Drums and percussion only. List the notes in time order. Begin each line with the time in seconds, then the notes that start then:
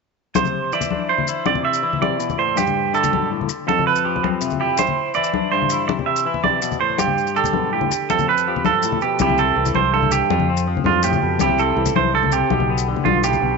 0.35 high conga, maracas
0.44 low conga, maracas
0.64 low conga
0.72 low conga, maracas
0.81 low conga, maracas
0.91 high conga
1.18 low conga
1.27 maracas
1.46 high conga
1.55 low conga
1.73 maracas
1.84 low conga
1.93 low conga
2.02 high conga, low conga
2.20 maracas
2.29 low conga, maracas
2.48 low conga
2.57 high conga, maracas
2.67 low conga, maracas
2.85 low conga
2.94 low conga, maracas
3.03 low conga, maracas
3.13 high conga
3.41 low conga
3.49 maracas
3.69 high conga
3.79 low conga
3.95 maracas
4.06 low conga
4.16 low conga
4.24 high conga, low conga
4.41 maracas
4.50 low conga, maracas
4.71 low conga
4.77 high conga, maracas
4.87 low conga, maracas
5.08 low conga
5.14 low conga, maracas
5.24 maracas
5.34 high conga
5.62 low conga
5.70 maracas
5.89 high conga
5.99 low conga
6.16 maracas
6.27 low conga
6.34 low conga
6.44 high conga, low conga
6.62 maracas
6.71 low conga, maracas
6.90 low conga
6.98 high conga, maracas
7.07 low conga
7.17 low conga, maracas
7.26 low conga, maracas
7.36 maracas
7.44 low conga, maracas
7.53 high conga
7.81 low conga
7.91 low conga, maracas
8.10 high conga, maracas
8.19 low conga, maracas
8.28 low conga
8.37 maracas
8.56 low conga
8.65 high conga, maracas
8.75 low conga
8.83 maracas
8.92 low conga
9.01 maracas
9.19 high conga, maracas
9.30 low conga
9.38 maracas
9.48 low conga
9.65 low conga, maracas
9.75 high conga
10.02 low conga
10.11 maracas
10.30 high conga
10.40 low conga
10.57 maracas
10.77 low conga
10.86 high conga, low conga
11.03 maracas
11.13 low conga, maracas
11.39 high conga, maracas
11.49 low conga
11.58 maracas
11.86 low conga, maracas
11.96 high conga
12.23 low conga
12.32 maracas
12.50 high conga
12.60 low conga
12.78 maracas
12.96 low conga
13.06 high conga, low conga
13.24 maracas
13.33 low conga, maracas